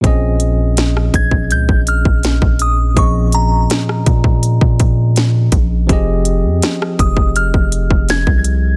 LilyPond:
<<
  \new Staff \with { instrumentName = "Synth bell" } { \time 4/4 \key bes \dorian \tempo 4 = 82 r4. aes'''8 g'''8 f'''4 ees'''8 | des'''8 bes''2. r8 | r4. ees'''8 f'''4 aes'''4 | }
  \new Staff \with { instrumentName = "Tine electric piano" } { \time 4/4 \key bes \dorian <bes, f c' des' aes' ees''>1 | <bes, f c' des' aes' ees''>1 | <f c' g' aes' ees''>1 | }
  \new Staff \with { instrumentName = "808-style bass" } { \clef bass \time 4/4 \key bes \dorian bes,,4. bes,,8 des,16 bes,,8 bes,,8 bes,,8. | bes,,4 r8 bes,8. bes,4~ bes,16 bes,,8 | f,,8. f,16 r8 f,,8. f,,8 f,,8 c,8. | }
  \new DrumStaff \with { instrumentName = "Drums" } \drummode { \time 4/4 <hh bd>8 hh8 <hh ss sn>16 ss16 <hh bd>16 bd16 hh16 bd16 hh16 bd16 <hh sn>16 bd16 hh8 | <hh bd>8 hh8 <hh ss sn>16 ss16 <hh bd>16 bd16 hh16 bd16 <hh bd>8 <hh sn>8 <hh bd>8 | <hh bd>8 hh8 <hh ss sn>16 ss16 <hh bd>16 bd16 hh16 bd16 hh16 bd16 <hh sn>16 bd16 hh8 | }
>>